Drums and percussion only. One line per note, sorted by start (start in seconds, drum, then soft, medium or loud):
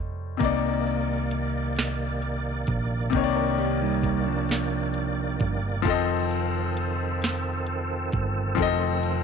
0.40 kick loud
0.40 closed hi-hat medium
0.87 closed hi-hat soft
1.31 closed hi-hat medium
1.77 snare loud
1.77 closed hi-hat medium
2.22 closed hi-hat medium
2.67 kick loud
2.67 closed hi-hat medium
3.13 kick loud
3.13 closed hi-hat medium
3.58 closed hi-hat soft
4.03 kick medium
4.03 closed hi-hat medium
4.49 snare loud
4.49 closed hi-hat medium
4.94 closed hi-hat medium
5.40 kick loud
5.40 closed hi-hat medium
5.85 kick loud
5.85 closed hi-hat medium
6.31 closed hi-hat soft
6.77 closed hi-hat medium
7.22 snare loud
7.22 closed hi-hat medium
7.67 closed hi-hat medium
8.12 kick loud
8.12 closed hi-hat medium
8.58 kick loud
8.58 closed hi-hat medium
9.03 closed hi-hat soft